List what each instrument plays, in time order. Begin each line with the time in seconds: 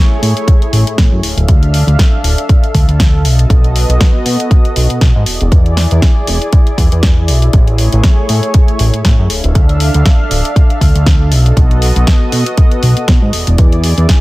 Already playing: analog synth pad A3 E4 G#4 C#5
0.22 analog synth bass A2, open hi-hat
0.37 closed hi-hat
0.48 kick, closed hi-hat
0.62 closed hi-hat
0.73 analog synth bass A1, open hi-hat
0.87 analog synth bass A2, closed hi-hat
0.98 analog synth bass A2, kick, snare, closed hi-hat
1.12 analog synth bass F#2
1.23 analog synth bass D1, analog synth pad D4 A4 E5 F5, open hi-hat
1.37 analog synth bass D1, closed hi-hat
1.48 analog synth bass D2, kick, closed hi-hat
1.63 closed hi-hat
1.74 open hi-hat
1.87 analog synth bass D2, closed hi-hat
1.99 kick, snare, closed hi-hat
2.24 analog synth bass D1, open hi-hat
2.38 closed hi-hat
2.49 kick, closed hi-hat
2.64 closed hi-hat
2.74 analog synth bass D2, kick, open hi-hat
2.88 analog synth bass D2, closed hi-hat
3.00 kick, snare, closed hi-hat
3.25 analog synth bass B1, analog synth pad B3 F#4 D#5, open hi-hat
3.39 closed hi-hat
3.50 analog synth bass B1, kick, closed hi-hat
3.64 closed hi-hat
3.76 open hi-hat
3.89 analog synth bass B1, closed hi-hat
4.00 kick, snare, closed hi-hat
4.26 analog synth bass B2, open hi-hat
4.40 closed hi-hat
4.51 kick, closed hi-hat
4.65 closed hi-hat
4.76 analog synth bass B1, open hi-hat
4.90 analog synth bass B2, closed hi-hat
5.01 analog synth bass B2, kick, snare, closed hi-hat
5.16 analog synth bass G#2
5.26 analog synth bass E1, analog synth pad E4 G#4 D5, open hi-hat
5.41 analog synth bass E1, closed hi-hat
5.52 analog synth bass E2, kick, closed hi-hat
5.66 closed hi-hat
5.77 snare, open hi-hat
5.91 analog synth bass E2, closed hi-hat
6.02 kick, snare, closed hi-hat
6.27 analog synth bass E1, open hi-hat
6.42 closed hi-hat
6.53 kick, closed hi-hat
6.67 closed hi-hat
6.78 analog synth bass E2, kick, open hi-hat
6.92 analog synth bass E2, closed hi-hat
7.03 kick, snare, closed hi-hat
7.28 analog synth bass B1, open hi-hat
7.42 closed hi-hat
7.53 analog synth bass A1, analog synth pad A3 G#4 C#5, kick, closed hi-hat
7.67 closed hi-hat
7.78 open hi-hat
7.92 analog synth bass A1, closed hi-hat
8.04 kick, snare, closed hi-hat
8.29 analog synth bass A2, open hi-hat
8.43 closed hi-hat
8.54 kick, closed hi-hat
8.68 closed hi-hat
8.79 analog synth bass A1, open hi-hat
8.94 analog synth bass A2, closed hi-hat
9.05 analog synth bass A2, kick, snare, closed hi-hat
9.19 analog synth bass F#2
9.30 analog synth bass D1, analog synth pad D4 A4 E5 F5, open hi-hat
9.44 analog synth bass D1, closed hi-hat
9.55 analog synth bass D2, kick, closed hi-hat
9.69 closed hi-hat
9.80 open hi-hat
9.94 analog synth bass D2, closed hi-hat
10.06 kick, snare, closed hi-hat
10.31 analog synth bass D1, open hi-hat
10.45 closed hi-hat
10.56 kick, closed hi-hat
10.70 closed hi-hat
10.81 analog synth bass D2, kick, open hi-hat
10.96 analog synth bass D2, closed hi-hat
11.06 kick, snare, closed hi-hat
11.31 analog synth bass B1, analog synth pad B3 F#4 D#5, open hi-hat
11.46 closed hi-hat
11.57 analog synth bass B1, kick, closed hi-hat
11.71 closed hi-hat
11.82 open hi-hat
11.96 analog synth bass B1, closed hi-hat
12.07 kick, snare, closed hi-hat
12.32 analog synth bass B2, open hi-hat
12.46 closed hi-hat
12.57 kick, closed hi-hat
12.71 closed hi-hat
12.83 analog synth bass B1, open hi-hat
12.97 analog synth bass B2, closed hi-hat
13.08 analog synth bass B2, kick, snare, closed hi-hat
13.22 analog synth bass G#2
13.33 analog synth bass E1, analog synth pad E4 G#4 D5, open hi-hat
13.47 analog synth bass E1, closed hi-hat
13.58 analog synth bass E2, kick, closed hi-hat
13.72 closed hi-hat
13.84 open hi-hat
13.98 analog synth bass E2, closed hi-hat
14.09 kick, snare, closed hi-hat